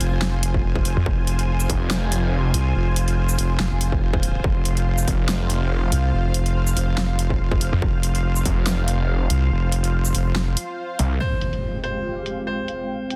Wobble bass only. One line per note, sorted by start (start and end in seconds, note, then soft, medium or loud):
0.01 0.62 F1 loud
0.64 0.95 F1 loud
1.06 1.68 F1 loud
2.54 2.74 C2 loud
2.75 3.37 F1 loud
3.39 3.58 F1 loud
3.60 3.69 F1 loud
3.71 4.43 F1 loud
4.44 5.06 F1 loud
5.92 6.12 C2 loud
6.13 6.75 F1 loud
6.77 7.38 F1 loud
7.40 7.71 F1 loud
7.82 8.44 F1 loud
9.30 9.50 C2 loud
9.51 10.13 F1 loud
10.15 10.55 F1 loud